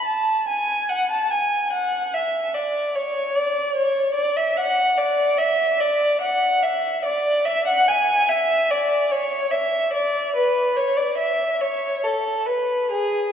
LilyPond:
\new Staff \with { instrumentName = "Violin" } { \time 4/4 \key a \major \tempo 4 = 73 a''8 gis''8 fis''16 a''16 gis''8 fis''8 e''8 d''8 cis''8 | \key e \mixolydian d''8 cis''8 d''16 e''16 fis''8 d''8 e''8 d''8 fis''8 | e''8 d''8 e''16 fis''16 gis''8 e''8 d''8 cis''8 e''8 | d''8 b'8 cis''16 d''16 e''8 cis''8 a'8 b'8 gis'8 | }